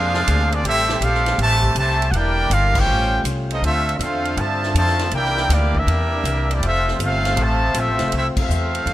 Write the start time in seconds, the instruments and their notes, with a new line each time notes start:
Already playing: upright bass F2, trombone section C3 G#3 A#3 D4 F4, trumpet section D4 G#4 C5 F5
0.14 snare
0.27 upright bass D2, hi-hat pedal, ride
0.51 trombone section F3 G#3 D4, trumpet section C4 F4 G#4 D5, ride
0.64 upright bass A1, trombone section G3 A3 C4 E4 G4, trumpet section C4 G4 A4 E5, ride
0.89 snare
1.00 upright bass A#1, trombone section G3 C4 F4, trumpet section C4 G4 A4 F5, hi-hat pedal, ride
1.14 snare
1.26 snare, ride
1.38 upright bass A1, trombone section C3 E3 A3, trumpet section G4 C5 E5 A5, ride
1.63 kick
1.75 upright bass C2, trombone section C3 E3 A3, trumpet section G4 C5 E5 A5, hi-hat pedal, ride
2.02 ride
2.11 upright bass E1, trombone section D3 A#3 D4 E4 G4, trumpet section F#5, ride
2.15 trumpet section E4 A#4 D5 G5
2.50 upright bass G1, trumpet section D4 G4 A#4 F5, trombone section F4, hi-hat pedal, ride
2.75 trombone section G3 C#4 G4, trumpet section F4 C5 C#5 G5, kick, crash
2.87 upright bass A1, trombone section A3 C#4 F4
3.24 upright bass C2, hi-hat pedal, ride
3.50 trumpet section C4 F4 A4 D#5, trombone section D#4, ride
3.62 upright bass D2, trombone section D3 A3 C4 D4 F4, trumpet section F4, ride
3.66 trumpet section C4 A4 E5
3.89 ride
3.97 upright bass E2, trumpet section E5, hi-hat pedal, ride
4.02 trombone section A3 C4 F4, trumpet section C4 A4 E5 F5
4.25 ride
4.37 upright bass G2, trombone section C3 F3 A3, trumpet section F4 C5 E5 A5, ride
4.63 snare
4.75 upright bass F2, trombone section C3 F3 A3, trumpet section F4 C5 E5 A5, hi-hat pedal, ride
4.87 snare
4.99 snare, ride
5.10 upright bass C2, trombone section C3 E3 A#3 D4, ride
5.15 trombone section A#3 E4 G4, trumpet section E4 A#4 D5 G5
5.25 snare
5.37 snare
5.49 upright bass D2, trombone section G3 A#3 D4, trumpet section A#3 E4 G4 D5, snare, hi-hat pedal, ride
5.75 trombone section G3 A#3 E4, trumpet section E5, kick
5.79 trumpet section D4 G4 A#4
5.87 upright bass E2, ride
6.24 upright bass C2, hi-hat pedal, ride
6.50 trombone section G3 A#3 D4, trumpet section A#3 G4 D5, ride
6.54 trumpet section E4
6.60 upright bass F1, trombone section A3 C4 F4, ride
6.66 trumpet section C4 F4 A4 E5
6.88 snare
6.99 upright bass G1, trombone section A3 C4 F4, hi-hat pedal, ride
7.04 trumpet section C4 A4 E5 F5
7.25 snare, ride
7.36 upright bass A1, trombone section C3 F3 A3, ride
7.42 trumpet section F4 C5 E5 A5
7.74 upright bass A#1, trombone section A3 C4 F4, hi-hat pedal, ride
7.79 trumpet section C4 F4 A4 E5
7.88 upright bass A1
7.99 upright bass F1, snare, ride
8.12 upright bass C2, trombone section A3 C4 E4, ride
8.17 trumpet section C4 F4 A4 E5
8.36 trombone section A3 C4 F4, muted upright bass stroke, kick, crash
8.41 trumpet section C4 A4 E5 F5
8.49 upright bass E2, hi-hat pedal
8.75 ride
8.86 upright bass F2, trombone section G3 A3 D4 D#4, ride